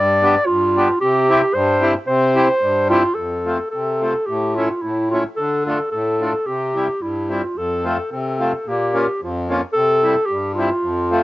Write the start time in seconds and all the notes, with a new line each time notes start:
Already playing: G2 D5
0.22 B3 D4 G4
0.46 G2 F4
0.77 B3 D4 G4
1.01 C3 G4
1.30 C4 E4 G4
1.54 G2 C5
1.81 C4 E4 G4
2.07 C3 C5
2.35 C4 E4 G4
2.61 G2
2.90 C4 E4 F4 G4
3.14 F2 A4
3.46 A3 C4 F4
3.70 C3 A4
4.01 A3 C4 F4
4.26 A2 G4
4.55 A3 C#4 E4 F4
4.82 A2 E4
5.11 A3 C#4 E4 F4
5.36 D3 A4
5.66 A3 D4 F4 A4
5.91 A2 A4
6.21 A3 D4 F4
6.47 C3 G4
6.75 G3 C4 E4
7.01 G2 E4
7.29 G3 C4 E4 F4
7.56 F2 A4
7.84 A3 C4 F4 A4
8.12 C3 A4
8.40 A3 C4 F4
8.66 A#2 G4
8.94 A#3 C#4 F4
9.22 F2 F4
9.49 A#3 C#4 F4
9.73 C3 A4
10.03 G3 C4 E4
10.26 G2 G4
10.54 G3 C4 F4
10.59 E4
10.83 F2
11.11 A3 C4 F4